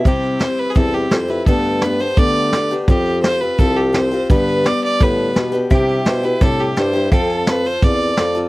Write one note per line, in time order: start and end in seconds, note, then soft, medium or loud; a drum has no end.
0.05 0.41 C3 medium
0.05 0.39 G3 medium
0.05 0.39 C4 medium
0.05 0.41 E4 medium
0.05 0.42 G4 medium
0.05 kick loud
0.05 closed hi-hat medium
0.23 closed hi-hat medium
0.39 0.75 G3 soft
0.39 0.75 C4 medium
0.39 0.75 E4 medium
0.39 0.76 G4 medium
0.39 0.61 C5 medium
0.39 snare loud
0.39 closed hi-hat medium
0.58 0.72 B4 medium
0.58 closed hi-hat medium
0.70 0.78 G#4 medium
0.75 1.06 E2 medium
0.75 1.11 C3 medium
0.75 1.11 G3 medium
0.75 1.11 C4 medium
0.75 1.12 E4 medium
0.75 1.14 G4 medium
0.75 0.96 A4 medium
0.75 kick loud
0.75 closed hi-hat medium
0.93 1.13 G4 medium
0.93 closed hi-hat medium
1.11 1.42 F2 medium
1.11 1.29 G3 medium
1.11 1.30 C4 medium
1.11 1.28 E4 medium
1.11 1.27 G4 medium
1.11 1.32 C5 medium
1.11 snare medium
1.11 closed hi-hat medium
1.28 1.47 C4 soft
1.28 1.47 E4 soft
1.28 1.46 G4 medium
1.28 1.46 B4 medium
1.28 closed hi-hat medium
1.46 1.82 G2 medium
1.46 2.05 G2 medium
1.46 1.82 D3 medium
1.46 1.81 A3 medium
1.46 1.83 B3 medium
1.46 1.83 D4 medium
1.46 1.85 G4 medium
1.46 1.84 A4 medium
1.46 kick loud
1.46 closed hi-hat medium
1.64 closed hi-hat medium
1.81 2.00 A3 medium
1.81 2.01 B3 medium
1.81 2.00 D4 medium
1.81 2.02 B4 medium
1.81 snare loud
1.81 closed hi-hat medium
1.86 1.98 G4 medium
1.99 2.17 A3 soft
1.99 2.17 B3 soft
1.99 2.18 D4 soft
1.99 2.17 G4 soft
1.99 2.20 C5 loud
1.99 closed hi-hat medium
2.17 2.53 G2 medium
2.17 2.76 D3 medium
2.17 2.53 D3 medium
2.17 2.52 A3 medium
2.17 2.53 B3 medium
2.17 2.53 D4 medium
2.17 2.56 G4 medium
2.17 2.71 D5 loud
2.17 kick loud
2.17 closed hi-hat medium
2.35 closed hi-hat medium
2.52 2.71 A3 medium
2.52 2.71 B3 medium
2.52 2.71 D4 medium
2.52 2.70 G4 medium
2.52 snare medium
2.52 closed hi-hat medium
2.70 2.88 A3 medium
2.70 2.89 B3 medium
2.70 2.89 D4 medium
2.70 2.88 G4 medium
2.70 closed hi-hat medium
2.88 3.47 F2 medium
2.88 3.22 F3 medium
2.88 3.24 C4 medium
2.88 3.24 F4 medium
2.88 3.21 G4 medium
2.88 3.26 G4 medium
2.88 kick loud
2.88 closed hi-hat medium
3.05 closed hi-hat medium
3.23 3.41 F3 medium
3.23 3.42 C4 medium
3.23 3.42 F4 medium
3.23 3.40 G4 medium
3.23 3.42 C5 loud
3.23 snare loud
3.23 closed hi-hat medium
3.41 3.58 C4 soft
3.41 3.59 F4 soft
3.41 3.59 G4 soft
3.41 3.61 B4 medium
3.41 closed hi-hat medium
3.58 4.18 C2 medium
3.58 3.92 F3 medium
3.58 3.93 C4 medium
3.58 3.94 F4 medium
3.58 3.96 G4 medium
3.58 3.78 A4 loud
3.58 kick loud
3.58 closed hi-hat medium
3.77 3.97 G4 medium
3.77 closed hi-hat medium
3.93 4.11 F3 medium
3.93 4.12 C4 medium
3.93 4.12 F4 medium
3.93 4.10 G4 medium
3.93 4.30 C5 medium
3.93 snare loud
3.93 closed hi-hat medium
4.11 4.30 C4 soft
4.11 4.30 F4 medium
4.11 4.29 G4 medium
4.11 closed hi-hat medium
4.29 4.65 G2 medium
4.29 4.66 G2 medium
4.29 4.65 D3 medium
4.29 4.64 G3 medium
4.29 4.65 B3 medium
4.29 4.66 D4 medium
4.29 4.67 G4 medium
4.29 4.67 B4 medium
4.29 kick loud
4.29 closed hi-hat medium
4.48 closed hi-hat medium
4.64 5.01 G3 medium
4.64 5.00 B3 medium
4.64 5.01 D4 medium
4.64 5.02 G4 medium
4.64 4.83 D5 medium
4.64 snare loud
4.64 closed hi-hat medium
4.83 5.04 D5 loud
4.83 closed hi-hat medium
5.00 5.35 G2 medium
5.00 5.30 A2 medium
5.00 5.36 D3 medium
5.00 5.33 G3 medium
5.00 5.34 B3 medium
5.00 5.35 D4 medium
5.00 5.36 G4 medium
5.00 5.54 B4 loud
5.00 kick loud
5.00 closed hi-hat medium
5.19 closed hi-hat medium
5.34 5.66 B2 medium
5.34 5.53 G3 soft
5.34 5.53 B3 medium
5.34 5.52 D4 medium
5.34 5.51 G4 medium
5.34 snare medium
5.34 closed hi-hat medium
5.52 5.70 G3 medium
5.52 5.71 B3 medium
5.52 5.70 D4 medium
5.52 5.70 G4 medium
5.52 closed hi-hat medium
5.70 6.06 C3 medium
5.70 6.00 C3 medium
5.70 6.04 G3 medium
5.70 6.05 D4 medium
5.70 6.07 E4 medium
5.70 6.07 G4 medium
5.70 6.08 G4 medium
5.70 7.11 E5 medium
5.70 7.11 G5 medium
5.70 kick loud
5.70 closed hi-hat medium
5.88 closed hi-hat medium
6.05 6.36 B2 medium
6.05 6.23 G3 medium
6.05 6.24 D4 medium
6.05 6.24 E4 medium
6.05 6.22 G4 medium
6.05 6.26 C5 medium
6.05 snare loud
6.05 closed hi-hat medium
6.23 6.41 D4 soft
6.23 6.41 E4 soft
6.23 6.41 G4 medium
6.23 6.44 B4 medium
6.23 closed hi-hat medium
6.41 6.71 A2 medium
6.41 6.76 C3 medium
6.41 6.75 G3 medium
6.41 6.76 D4 medium
6.41 6.77 E4 medium
6.41 6.77 G4 medium
6.41 6.62 A4 medium
6.41 kick loud
6.41 closed hi-hat loud
6.59 6.80 G4 medium
6.59 closed hi-hat medium
6.77 7.07 G2 medium
6.77 6.94 G3 medium
6.77 6.95 D4 medium
6.77 6.94 E4 medium
6.77 6.92 G4 medium
6.77 7.12 C5 medium
6.77 snare loud
6.77 closed hi-hat medium
6.93 7.12 D4 soft
6.93 7.12 E4 medium
6.93 7.11 G4 medium
6.93 closed hi-hat medium
7.11 7.71 F2 medium
7.11 7.45 F3 medium
7.11 7.47 C4 medium
7.11 7.48 F4 medium
7.11 7.52 A4 medium
7.11 7.48 A4 medium
7.11 8.49 F5 medium
7.11 7.38 G5 medium
7.11 kick loud
7.11 closed hi-hat medium
7.29 closed hi-hat medium
7.38 8.49 A5 medium
7.47 7.65 F3 medium
7.47 7.65 C4 medium
7.47 7.65 F4 medium
7.47 7.63 A4 medium
7.47 7.68 B4 medium
7.47 snare loud
7.47 closed hi-hat medium
7.64 7.82 C4 soft
7.64 7.82 F4 soft
7.64 7.82 A4 soft
7.64 7.85 C5 medium
7.64 closed hi-hat medium
7.82 8.13 E2 medium
7.82 8.17 C4 medium
7.82 8.18 F4 medium
7.82 8.19 A4 medium
7.82 8.36 D5 medium
7.82 kick loud
7.82 closed hi-hat medium
8.00 closed hi-hat medium
8.17 8.48 F2 medium
8.17 8.35 F3 medium
8.17 8.36 C4 medium
8.17 8.35 F4 medium
8.17 8.33 A4 medium
8.17 snare loud
8.17 closed hi-hat medium
8.35 8.49 C4 medium
8.35 8.49 F4 medium
8.35 8.49 A4 medium
8.35 closed hi-hat medium